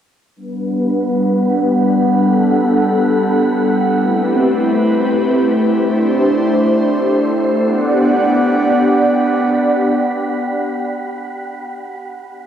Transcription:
0.36 analog synth pad G3 B3 D4 B4 F#5, synth texture G4 F#5 B5
2.18 analog synth pad A4
4.00 analog synth pad A3 C4 E4 G4 B4, synth texture C4 A4 G5
5.82 analog synth pad D4 C5, synth texture D4 A4 E5 C6
7.64 analog synth pad B3 D4 G4 D5 F#5, synth texture G4 F#5 B5

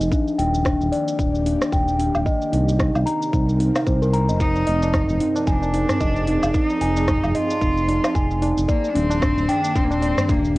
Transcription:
Already playing: ambient pad F3 C4 G#4 D#5
0.01 analog synth bass F1, shaker
0.12 ambient pad D#3, steel tongue drum D4, kick, shaker
0.28 ambient pad A#3, shaker
0.38 analog synth bass D#1, steel tongue drum G5, open hi-hat
0.54 shaker
0.65 steel tongue drum D4, kick, cross-stick, shaker
0.70 ambient pad G4
0.81 analog synth bass D#1, shaker
0.92 steel tongue drum D5, open hi-hat
1.08 ambient pad D5, shaker
1.19 analog synth bass D#1, steel tongue drum D4, kick, shaker
1.35 shaker
1.46 steel tongue drum D4, open hi-hat
1.62 cross-stick, shaker
1.72 analog synth bass D#1, steel tongue drum G5, kick, shaker
1.88 shaker
1.99 steel tongue drum D4, open hi-hat
2.15 analog synth bass D#1, low woodblock, shaker
2.25 ambient pad C3, steel tongue drum D#5, kick, shaker
2.34 ambient pad C4
2.42 shaker
2.52 analog synth bass C2, steel tongue drum D#4, open hi-hat
2.64 ambient pad A#4 C5
2.69 shaker
2.79 steel tongue drum D#4, kick, cross-stick, shaker
2.95 analog synth bass C2, low woodblock, shaker
3.06 steel tongue drum A#5, open hi-hat
3.22 shaker
3.33 analog synth bass C2, steel tongue drum D#4, kick, shaker
3.49 shaker
3.60 steel tongue drum D#4, open hi-hat
3.75 cross-stick, low woodblock, shaker
3.86 analog synth bass C2, steel tongue drum C5, kick, shaker
4.02 steel tongue drum A#4, shaker
4.13 steel tongue drum A#5, open hi-hat
4.29 analog synth bass F1, steel tongue drum D#5, shaker
4.40 ambient pad F3, cello D#4, steel tongue drum D#4, kick, shaker
4.55 tabla tin, shaker
4.67 analog synth bass F1, steel tongue drum D#5, open hi-hat
4.82 tabla na, shaker
4.94 steel tongue drum D#4, kick, cross-stick, tabla ge, shaker
5.09 analog synth bass F1, shaker
5.14 ambient pad G#4
5.20 steel tongue drum D#4, open hi-hat
5.36 tabla na, shaker
5.47 analog synth bass F1, cello D4, steel tongue drum G#5, kick, shaker
5.62 tabla na, shaker
5.74 steel tongue drum D#4, open hi-hat, tabla na
5.89 cross-stick, tabla ge, shaker
6.01 analog synth bass F1, steel tongue drum D#5, kick, shaker
6.16 shaker
6.27 steel tongue drum D#4, open hi-hat
6.42 analog synth bass F1, tabla tin, low woodblock, shaker
6.54 cello D#4, steel tongue drum D#4, kick, shaker
6.70 tabla tin, shaker
6.81 analog synth bass F1, steel tongue drum G#5, open hi-hat
6.97 tabla na, shaker
7.08 steel tongue drum D#4, kick, cross-stick, tabla ge, shaker
7.24 analog synth bass F1, low woodblock, shaker
7.35 cello F4, steel tongue drum D#5, open hi-hat
7.50 tabla na, shaker
7.61 analog synth bass F1, steel tongue drum D#4, kick, shaker
7.77 shaker
7.88 steel tongue drum D#4, open hi-hat, tabla na, tabla tin
8.04 cross-stick, tabla na, low woodblock, shaker
8.15 analog synth bass F1, steel tongue drum G#5, kick, shaker
8.31 tabla tin, shaker
8.42 steel tongue drum D#4, open hi-hat, tabla na, tabla tin
8.57 analog synth bass F1, tabla tin, shaker
8.68 ambient pad D#3, cello A#3, steel tongue drum D5, kick, shaker
8.84 ambient pad A#3, tabla tin, shaker
8.89 cello D4
8.95 analog synth bass D#1, cello C4, steel tongue drum D4, open hi-hat
9.10 tabla na, shaker
9.22 steel tongue drum D4, kick, cross-stick, tabla ge, shaker
9.29 ambient pad G4
9.38 analog synth bass D#1, shaker
9.49 cello D4, steel tongue drum G5, open hi-hat
9.64 ambient pad D5, tabla na, shaker
9.76 analog synth bass D#1, cello C4, steel tongue drum D4, kick, shaker
9.84 cello A#3
9.91 cello C4, tabla na, shaker
10.02 steel tongue drum D5, open hi-hat, tabla na
10.18 cross-stick, tabla ge, shaker
10.29 analog synth bass D#1, cello A#3, steel tongue drum D4, kick, shaker
10.45 shaker

